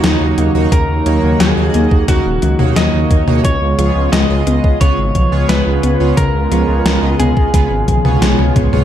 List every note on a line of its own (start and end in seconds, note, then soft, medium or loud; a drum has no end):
0.00 3.41 C#3 medium
0.00 3.41 F#3 medium
0.00 0.51 A#3 medium
0.00 3.41 A#3 medium
0.00 0.51 D#4 medium
0.00 3.41 D#4 medium
0.00 0.74 D#4 medium
0.00 0.51 F#4 medium
0.00 0.51 C#5 loud
0.00 snare loud
0.00 closed hi-hat medium
0.04 0.16 D#2 loud
0.04 0.29 F#3 medium
0.21 0.33 D#2 medium
0.38 0.50 D#2 medium
0.38 0.63 A#3 medium
0.38 closed hi-hat medium
0.55 0.67 D#2 medium
0.55 0.72 A#3 loud
0.55 0.72 D#4 loud
0.55 0.72 F#4 medium
0.55 0.72 C#5 loud
0.72 0.84 D#2 loud
0.72 0.97 C#3 medium
0.72 1.42 A#4 loud
0.72 kick loud
0.72 closed hi-hat medium
0.89 1.01 D#2 medium
1.06 1.19 D#2 loud
1.06 1.31 D#3 medium
1.06 1.53 A#3 medium
1.06 1.53 D#4 medium
1.06 1.53 F#4 medium
1.06 1.53 C#5 loud
1.06 closed hi-hat medium
1.23 1.36 D#2 medium
1.40 1.53 D#2 loud
1.40 1.73 F#3 loud
1.40 2.08 G#4 loud
1.40 snare loud
1.40 closed hi-hat medium
1.57 1.70 D#2 medium
1.57 2.04 A#3 medium
1.57 2.04 D#4 medium
1.57 2.04 F#4 medium
1.57 2.04 D#5 medium
1.74 1.87 D#2 medium
1.74 1.99 A#3 medium
1.74 closed hi-hat medium
1.91 2.04 D#2 medium
1.91 kick loud
2.08 2.21 D#2 loud
2.08 2.34 C#3 loud
2.08 2.25 A#3 medium
2.08 2.25 D#4 medium
2.08 2.25 F#4 medium
2.08 2.79 F#4 loud
2.08 2.25 A#4 medium
2.08 kick loud
2.08 snare soft
2.08 closed hi-hat medium
2.26 2.38 D#1 medium
2.42 2.55 C#2 loud
2.42 2.58 D#3 medium
2.42 closed hi-hat medium
2.59 2.72 D#2 medium
2.59 3.23 A#3 medium
2.59 3.23 D#4 medium
2.59 3.23 F#4 medium
2.59 3.23 C#5 loud
2.59 mid tom loud
2.76 2.89 D#2 loud
2.76 2.92 F#3 medium
2.76 3.44 D#5 loud
2.76 snare loud
2.76 closed hi-hat medium
2.94 3.06 D#2 medium
3.11 3.23 D#2 medium
3.11 3.36 A#3 medium
3.11 kick loud
3.11 closed hi-hat medium
3.28 3.40 D#2 medium
3.28 3.43 A#3 loud
3.28 3.43 D#4 medium
3.28 3.43 F#4 medium
3.28 3.43 C#5 loud
3.28 mid tom medium
3.45 3.57 C#2 loud
3.45 3.70 C#3 medium
3.45 8.84 C#3 medium
3.45 8.84 G#3 medium
3.45 8.84 B3 medium
3.45 8.84 F4 loud
3.45 4.12 C#5 loud
3.45 kick loud
3.45 closed hi-hat medium
3.62 3.74 C#2 medium
3.79 3.91 C#2 loud
3.79 4.04 F3 medium
3.79 4.26 B3 medium
3.79 4.26 F4 medium
3.79 4.26 G#4 medium
3.79 4.26 C#5 medium
3.79 closed hi-hat medium
3.96 4.08 C#2 medium
4.12 4.25 C#2 loud
4.12 4.38 G#3 medium
4.12 4.80 D#5 loud
4.12 snare loud
4.12 closed hi-hat medium
4.30 4.42 C#2 medium
4.30 4.77 B3 medium
4.30 4.77 F4 medium
4.30 4.77 G#4 medium
4.30 4.77 D#5 medium
4.47 4.59 C#2 medium
4.47 4.72 B3 medium
4.47 closed hi-hat medium
4.64 4.76 C#2 medium
4.64 kick loud
4.81 4.94 C#2 loud
4.81 5.06 C#3 medium
4.81 4.98 B3 medium
4.81 4.98 F4 medium
4.81 4.98 G#4 medium
4.81 4.98 B4 medium
4.81 5.45 C#5 loud
4.81 kick loud
4.81 closed hi-hat medium
4.98 5.11 G#1 medium
5.15 5.28 B1 medium
5.15 5.40 F3 medium
5.15 kick medium
5.15 closed hi-hat medium
5.32 5.45 C#2 medium
5.32 5.96 B3 medium
5.32 5.96 F4 medium
5.32 5.96 G#4 medium
5.32 5.96 C#5 loud
5.49 5.62 C#2 loud
5.49 5.82 G#3 loud
5.49 6.13 B4 loud
5.49 snare loud
5.49 closed hi-hat medium
5.67 5.79 C#2 medium
5.83 5.96 C#2 medium
5.83 6.08 B3 medium
5.83 closed hi-hat medium
6.00 6.13 C#2 medium
6.00 6.17 B3 loud
6.00 6.17 F4 medium
6.00 6.17 G#4 medium
6.00 6.17 C#5 loud
6.17 6.30 C#2 loud
6.17 6.42 C#3 loud
6.17 7.19 A#4 loud
6.17 kick loud
6.17 closed hi-hat loud
6.35 6.47 C#2 medium
6.51 6.64 C#2 medium
6.51 6.67 F3 medium
6.51 6.99 B3 medium
6.51 6.99 F4 medium
6.51 6.99 G#4 medium
6.51 6.99 C#5 medium
6.51 closed hi-hat medium
6.69 6.81 C#2 medium
6.86 6.98 C#2 loud
6.86 7.01 G#3 medium
6.86 snare loud
6.86 closed hi-hat medium
7.03 7.15 C#2 medium
7.03 7.50 B3 medium
7.03 7.50 F4 medium
7.03 7.50 G#4 medium
7.03 7.50 D#5 medium
7.19 7.32 C#2 medium
7.19 7.45 B3 medium
7.19 8.52 G#4 medium
7.19 closed hi-hat medium
7.19 mid tom medium
7.37 7.49 C#2 medium
7.37 kick loud
7.54 7.66 C#2 loud
7.54 7.79 C#3 medium
7.54 7.71 B3 medium
7.54 7.71 F4 medium
7.54 7.71 G#4 medium
7.54 7.71 B4 medium
7.54 kick loud
7.54 snare soft
7.54 closed hi-hat medium
7.71 7.83 G#1 medium
7.88 8.00 B1 medium
7.88 8.13 F3 medium
7.88 kick medium
7.88 closed hi-hat medium
7.88 high tom medium
8.05 8.17 C#2 medium
8.05 8.69 B3 medium
8.05 8.69 F4 medium
8.05 8.69 G#4 medium
8.05 8.69 C#5 loud
8.05 mid tom loud
8.22 8.34 B1 loud
8.22 8.47 G#3 medium
8.22 snare loud
8.22 closed hi-hat medium
8.22 mid tom medium
8.39 8.52 C#2 medium
8.39 mid tom medium
8.56 8.69 C#2 loud
8.56 8.81 B3 medium
8.56 kick loud
8.56 closed hi-hat medium
8.56 mid tom medium
8.73 8.84 C#2 medium
8.73 8.84 B3 loud
8.73 8.84 F4 medium
8.73 8.84 G#4 medium
8.73 8.84 C#5 loud
8.73 mid tom medium
8.73 mid tom loud